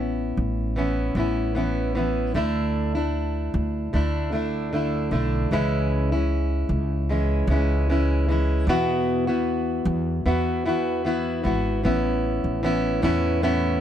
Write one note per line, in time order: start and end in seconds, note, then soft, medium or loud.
0.00 0.33 A1 medium
0.00 0.76 B3 soft
0.00 0.77 C#4 soft
0.00 0.79 E4 medium
0.37 1.13 A1 medium
0.76 1.15 E3 medium
0.76 1.16 B3 medium
0.76 1.17 C#4 medium
0.76 1.18 E4 medium
1.15 2.31 A1 medium
1.15 1.54 E3 medium
1.15 1.55 B3 medium
1.15 1.56 C#4 medium
1.20 1.57 E4 medium
1.55 1.94 E3 medium
1.55 1.95 B3 medium
1.55 1.97 C#4 medium
1.55 1.97 E4 medium
1.95 2.35 E3 medium
1.95 2.35 B3 medium
1.95 2.36 C#4 medium
1.95 2.36 E4 medium
2.34 3.50 D2 medium
2.34 2.95 D3 medium
2.34 2.95 A3 medium
2.34 2.96 D4 medium
2.34 2.94 E4 medium
2.95 3.93 A3 soft
2.95 3.94 D4 medium
2.95 3.96 E4 medium
3.54 3.90 D2 loud
3.93 5.08 D2 medium
3.93 4.31 D3 medium
3.93 4.32 A3 medium
3.93 4.33 D4 medium
3.93 4.34 E4 medium
4.32 4.72 D3 medium
4.32 4.73 A3 medium
4.32 4.73 D4 medium
4.32 4.74 E4 medium
4.73 5.10 D3 medium
4.73 5.11 A3 medium
4.73 5.13 D4 medium
4.73 5.14 E4 medium
5.11 5.48 B1 medium
5.11 5.52 D3 medium
5.11 5.52 A3 medium
5.11 5.53 D4 medium
5.11 5.53 E4 medium
5.51 6.66 C#2 medium
5.51 6.11 C#3 medium
5.51 6.12 E3 medium
5.51 6.12 G#3 medium
5.51 6.12 C#4 medium
5.51 6.11 E4 medium
6.12 7.09 G#3 soft
6.12 7.11 C#4 soft
6.12 7.12 E4 medium
6.69 7.45 C#2 medium
7.09 7.48 E3 medium
7.09 7.49 G#3 medium
7.09 7.50 C#4 medium
7.09 7.51 E4 medium
7.47 8.63 C#2 loud
7.47 7.88 E3 medium
7.47 7.89 G#3 medium
7.47 7.90 C#4 medium
7.52 7.90 E4 medium
7.90 8.27 E3 medium
7.90 8.29 G#3 medium
7.90 8.29 C#4 medium
7.90 8.30 E4 medium
8.29 8.68 E3 medium
8.29 8.69 G#3 medium
8.29 8.69 C#4 medium
8.29 8.69 E4 medium
8.67 9.82 E2 loud
8.67 9.28 E2 medium
8.67 9.28 B2 medium
8.67 9.28 E3 loud
8.67 9.28 B3 loud
8.67 9.27 E4 medium
8.67 9.26 F#4 loud
9.27 10.25 E3 soft
9.27 10.26 B3 medium
9.27 10.27 E4 soft
9.27 10.26 F#4 medium
9.85 10.22 E2 loud
10.26 11.41 E2 medium
10.26 10.64 E3 medium
10.26 10.65 B3 medium
10.26 10.66 E4 medium
10.26 10.67 F#4 medium
10.66 11.04 E3 medium
10.66 11.05 B3 medium
10.66 11.06 E4 medium
10.66 11.07 F#4 medium
11.05 11.42 E3 medium
11.05 11.44 B3 medium
11.05 11.45 E4 medium
11.05 11.45 F#4 medium
11.44 11.81 G#1 medium
11.44 11.82 E3 medium
11.44 11.83 B3 medium
11.44 11.85 E4 medium
11.44 11.85 F#4 medium
11.84 12.40 A1 medium
11.84 12.63 E3 medium
11.84 12.63 B3 medium
11.84 12.63 C#4 medium
11.84 12.65 E4 medium
12.44 12.99 A1 medium
12.63 13.02 E3 medium
12.63 13.02 B3 medium
12.63 13.03 C#4 medium
12.63 13.03 E4 medium
13.02 13.78 E2 medium
13.02 13.41 A2 medium
13.02 13.42 E3 medium
13.02 13.42 B3 medium
13.02 13.43 C#4 loud
13.02 13.43 E4 medium
13.42 13.81 A2 medium
13.42 13.81 E3 medium
13.42 13.81 B3 medium
13.42 13.81 C#4 medium
13.42 13.81 E4 medium